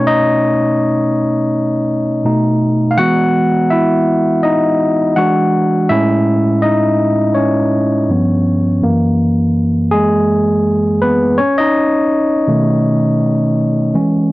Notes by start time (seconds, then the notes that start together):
Already playing: B2 A3 C#4 D#4 C#5
0.07 D#4 D#5
2.24 B2 A3 D#4
2.91 F5
2.98 E3 G#3 B3 F#4 F#5
3.70 E4 E5
4.43 D#4 D#5
5.16 E3 G#3 D4 F#4 F#5
5.89 A2 G#3 C#4 E4 E5
6.62 D#4 D#5
7.34 C#4 C#5
8.09 G2 F3 B3
8.82 F#2 E3 A#3
9.91 G#3 G#4
11.02 B3 B4
11.38 C#4 C#5
11.58 D#4 D#5
12.47 B2 D#3 A3
13.94 E3 G#3 C#4